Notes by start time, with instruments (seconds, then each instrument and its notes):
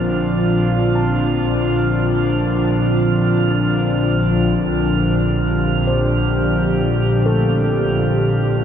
Already playing: double bass section A#1, analog synth pad A#2 D3 F3 C4 D4 F4, synth drone F3 C4, felt piano A3 F4, synth texture F6
0.95 felt piano A5
5.43 analog synth pad G4
5.87 felt piano C5
7.26 felt piano A3